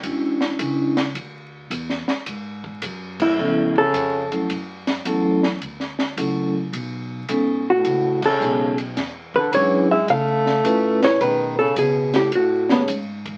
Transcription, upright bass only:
X:1
M:4/4
L:1/8
Q:"Swing" 1/4=108
K:Emix
V:1 name="Upright bass" clef=bass
E,,2 C,,2 D,,2 E,, z | G,,2 F,,2 C,,2 ^E,,2 | F,,2 E,,2 D,,2 C,,2 | B,,,2 A,,,2 C,,2 B,,,2 |
E,,2 G,,2 C,2 A,,2 | B,,2 C,2 A,,2 G,,2 |]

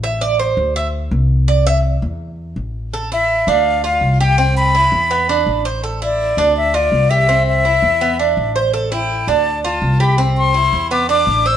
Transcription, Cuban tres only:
X:1
M:4/4
L:1/8
Q:1/4=166
K:Am
V:1 name="Cuban tres"
e d c2 e z3 | d e z6 | A E2 D2 F2 G | C2 E2 B, D2 c |
A E2 D2 F2 G | C2 E2 B, D2 c | A E2 D2 F2 G | C2 E2 B, D2 c |]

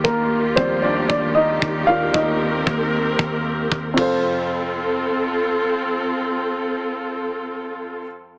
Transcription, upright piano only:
X:1
M:4/4
L:1/8
Q:1/4=115
K:Fmix
V:1 name="Upright piano"
[B,B]2 [Cc] [Dd] [Dd] [Ee]2 [Ff] | [Ee]6 z [CFAc]- | [CFAc]8- | [CFAc]8 |]
V:2 name="Upright piano" clef=bass
z2 [F,G,d]4- [F,G,d] [E,B,D] | z6 z F,,- | F,,8- | F,,8 |]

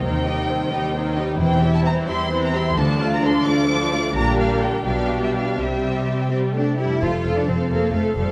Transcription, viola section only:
X:1
M:6/8
L:1/8
Q:3/8=87
K:Cdor
V:1 name="Viola section"
[E,C] [G,E] [E,C] [G,E] [E,C] [G,E] | [K:F] [E,C] [G,E] [E,C] [G,E] [E,C] [G,E] | [F,D] [A,F] [F,D] [A,F] [F,D] [A,F] | [G,D]3 [G,D]3 |
[G,C]3 G, A, G, | A A A A A A |]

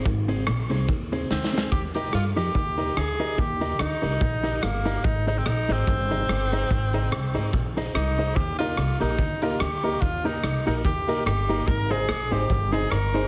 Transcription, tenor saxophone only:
X:1
M:4/4
L:1/16
Q:"Swing" 1/4=145
K:Eb
V:1 name="Tenor saxophone"
z12 C4 | G2 G2 F2 G6 A4 | G4 E8 B,4 | E2 E C E2 C8- C2- |
C8- C z3 E4 | G2 F4 E4 F2 G4 | F2 E4 E2 G4 G4 | B2 A4 G4 A2 B4 |]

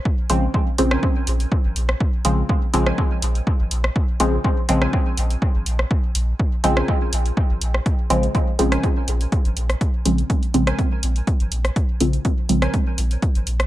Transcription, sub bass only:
X:1
M:4/4
L:1/16
Q:1/4=123
K:Bbm
V:1 name="Sub bass" clef=bass
z2 B,,, z3 B,,, z3 B,,, z2 A,,, B,,, z | z2 B,,, z3 B,,, z3 B,,, z2 A,,, B,,, z | z2 B,,, z3 B,,, z3 B,,, z2 A,,, B,,, z | z2 B,,, z3 B,,, z3 B,,, z2 A,,, B,,, z |
z2 B,,, z3 B,,, z3 B,,, z2 A,,, B,,, z | z2 B,,, z3 B,,, z3 B,,, z2 A,,, B,,, z | z2 B,,, z3 B,,, z3 B,,, z2 A,,, B,,, z |]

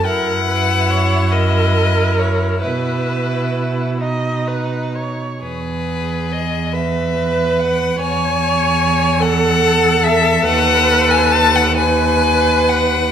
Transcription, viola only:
X:1
M:6/8
L:1/8
Q:3/8=46
K:E
V:1 name="Viola"
^A B c A3 | B3 d B c | z3 B3 | c3 A3 |
B3 B3 |]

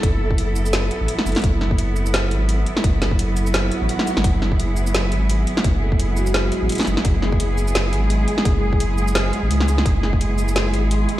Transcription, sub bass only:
X:1
M:4/4
L:1/16
Q:"Swing 16ths" 1/4=171
K:F#m
V:1 name="Sub bass" clef=bass
F,,,8- F,,,2 z A,,, z2 F,,, z | F,,,8- F,,,2 G,,,4 z2 | F,,,8- F,,,2 z A,,, z3 G,,, | F,,,8- F,,,2 G,,,4 z2 |
F,,,8- F,,,2 z A,,, z2 F,,, z | F,,,8- F,,,2 G,,,4 z2 | F,,,8- F,,,2 z A,,, C,,4 | F,,,8- F,,,2 G,,,4 z2 |]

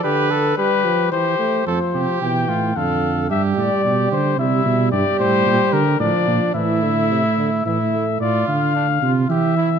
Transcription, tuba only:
X:1
M:3/4
L:1/8
Q:1/4=110
K:F
V:1 name="Tuba" clef=bass
z6 | F,, C, =B,, A,, F,,2 | G,, A,, =B,, D, C, B,, | [K:Dm] G,, A,, B,, D, A,, B,, |
A,,4 A,,2 | A,, D,2 C, E,2 |]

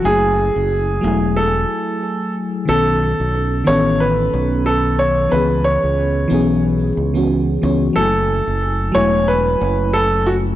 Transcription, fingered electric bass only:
X:1
M:4/4
L:1/16
Q:"Swing 16ths" 1/4=91
K:F#dor
V:1 name="Fingered electric bass" clef=bass
F,,,3 F,,,3 E,,,4 z6 | B,,,3 B,,,3 A,,,4 B,,,6 | C,,3 C,,3 B,,,4 C,,4 C,, z | F,,,3 F,,,3 E,,,4 F,,,6 |]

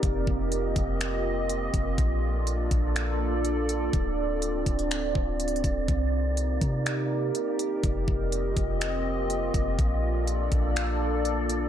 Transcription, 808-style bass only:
X:1
M:4/4
L:1/8
Q:1/4=123
K:Fmix
V:1 name="808-style bass" clef=bass
F,,, F,,,2 F,,,4 F,,, | B,,,3 B,,,4- B,,, | D,,,3 D,,,2 D,,,2 D,,, | C,,3 C,3 z2 |
F,,, F,,,2 F,,,4 F,,, | B,,,3 B,,,4- B,,, |]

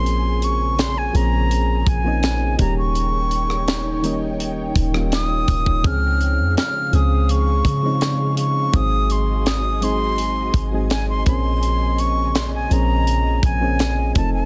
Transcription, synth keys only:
X:1
M:4/4
L:1/16
Q:1/4=83
K:Bbm
V:1 name="Synth keys"
[F,B,CDA]4 z2 [F,B,CDA]4 z [F,B,CDE]3 [E,=G,B,D=G]2- | [E,=G,B,D=G]4 z2 [E,G,B,DE]4 z [E,G,B,DF]4 z | [F,A,CDA]4- [F,A,CDA] z [F,A,CDA]4 z [F,A,CDE]4 z | [G,A,CEA]4- [G,A,CEA] z [G,A,CEA]4 z [G,A,CEA]3 [F,B,CDA]2- |
[F,B,CDA]4 z2 [F,B,CDA]4 z [F,B,CDA]3 [F,=A,CE=A]2 |]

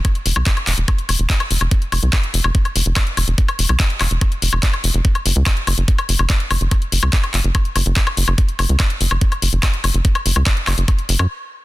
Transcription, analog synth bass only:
X:1
M:4/4
L:1/16
Q:1/4=144
K:Gblyd
V:1 name="Analog synth bass" clef=bass
z2 F,,, C,, z2 F,,, F,,, z2 F,,, F,,, z2 F,,, F,,, | z2 F,,, C,, z2 F,,, F,,, z2 F,,, F,,, z2 F,,, F,,, | z2 F,,, C,, z2 F,,, F,,, z2 F,,, F,,, z2 F,,, F,,, | z2 G,,, D,, z2 G,,, G,,, z2 G,,, G,,, z2 G,,, G,,, |
z2 G,,, D,, z2 G,,, G,,, z2 G,,, G,,, z2 G,,, G,,, | z2 G,,, D,, z2 G,,, G,,, z2 G,,, G,,, z2 G,,, G,,, | z2 G,,, D,, z2 G,,, G,,, z2 G,,, G,, z4 |]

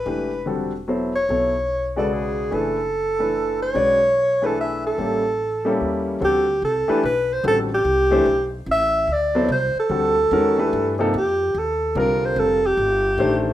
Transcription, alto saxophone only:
X:1
M:3/4
L:1/8
Q:"Swing" 1/4=146
K:Bphr
V:1 name="Alto saxophone"
B2 z3 ^c- | ^c3 A ^G2 | A4- A ^c- | ^c3 A e A- |
A4 z2 | [K:Fmix] G2 A2 =B c | A G4 z | =e2 d2 c A- |
A4- A z | G2 A2 B c | A G4 z |]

